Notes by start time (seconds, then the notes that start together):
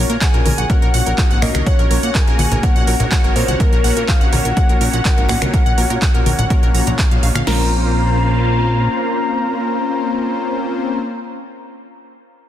Already playing: A#3 C#4 F#4 C#5
0.10 A#2 A#4, closed hi-hat
0.21 F#5 G#5, kick, clap, closed hi-hat
0.34 A#1 A#3 C#4 F4 F#4 A#4, closed hi-hat
0.46 A#1 A#4, open hi-hat, high conga
0.58 A#1 F#5, closed hi-hat
0.70 A#3 C#4 F#4 A#4 C#5 F#5, kick, closed hi-hat
0.82 A#1 A#4, closed hi-hat
0.94 A#1 F#5, open hi-hat
1.06 A#1 A#4, closed hi-hat
1.18 A#3 C#4 F4 F#4 A#4, kick, clap, closed hi-hat
1.31 G#1 A#3 C#4 F4 F#4 C#5 F#5, closed hi-hat
1.42 A#2 A#3 C#4 F4 F#4 A#4 D#5, finger snap, open hi-hat, low conga
1.55 C2 A#4, finger snap, closed hi-hat, high conga
1.66 C#5 F#5, kick, closed hi-hat
1.79 A#1 A#4, closed hi-hat
1.91 A#1 A#3 C#4 F4 F#4 A#4 C#5, open hi-hat
2.03 A#2 F#5, closed hi-hat
2.15 A#4 G#5, kick, clap, closed hi-hat
2.27 A#1 A#3 C#4 F4 F#4 A#4, closed hi-hat
2.39 A#1 F#5, open hi-hat, high conga
2.51 A#1 A#4, closed hi-hat, low conga
2.63 A#3 C#4 F#4 A#4 C#5 F#5, kick, closed hi-hat
2.76 A#1 F#5, closed hi-hat
2.87 A#1 A#4, open hi-hat
3.00 A#1 A#4, closed hi-hat, low conga
3.12 A#3 C#4 F4 F#4 D#5 F#5, kick, clap, closed hi-hat
3.24 G#1 A#3 C#4 F4 F#4 A#4 C#5, closed hi-hat
3.36 A#2 A#3 C#4 F4 F#4 A#4 C5 D#5, open hi-hat
3.48 C2 F#5, closed hi-hat, high conga
3.60 A#4, kick, closed hi-hat
3.72 A#1 A#4, closed hi-hat
3.84 A#1 A#3 C#4 F4 F#4 C#5 F#5, open hi-hat
3.97 A#2 A#4, closed hi-hat
4.08 A#4 F5, kick, clap, closed hi-hat
4.21 A#1 A#3 C#4 F4 F#4 A#4 F#5, closed hi-hat
4.32 A#1 A#4 F#5, open hi-hat, high conga
4.45 A#1 A#4, closed hi-hat
4.57 A#3 C#4 F#4 C#5 F#5, kick, closed hi-hat
4.69 A#1 A#4, closed hi-hat
4.81 A#1 A#4, open hi-hat
4.93 A#1 F#5, closed hi-hat
5.05 A#3 C#4 F4 F#4 A#4 D#5, kick, clap, closed hi-hat
5.18 G#1 A#3 C#4 F4 F#4 A#4 C#5, closed hi-hat
5.29 A#2 A#3 C#4 F4 F#4 D#5 F#5, finger snap, open hi-hat, low conga
5.42 C2 A#4, finger snap, closed hi-hat, high conga
5.54 A#4, kick, closed hi-hat
5.66 A#1 F#5, closed hi-hat
5.78 A#1 A#3 C#4 F4 F#4 A#4 C#5, open hi-hat
5.90 A#2 A#4, closed hi-hat
6.02 F#5, kick, clap, closed hi-hat
6.14 A#1 A#3 C#4 F4 F#4 A#4, closed hi-hat
6.26 A#1 A#4, open hi-hat, high conga
6.39 A#1 F#5, closed hi-hat, low conga
6.50 A#3 C#4 F4 F#4 A#4 C#5, kick, closed hi-hat
6.63 A#1 A#4, closed hi-hat
6.75 A#1 A#3 C#4 F4 F#4 C#5 A#5, open hi-hat
6.87 A#1 A#5, closed hi-hat, low conga
6.99 F5, kick, clap, closed hi-hat
7.11 A#1 A#3 C#4 F4 F#4 D#5 F5, closed hi-hat
7.23 A#1 F5, open hi-hat
7.35 A#1 F5, finger snap, closed hi-hat, high conga
7.47 A#1 A#3 C4 C#4 F4 A#4 C5 F5 A#5, snare, crash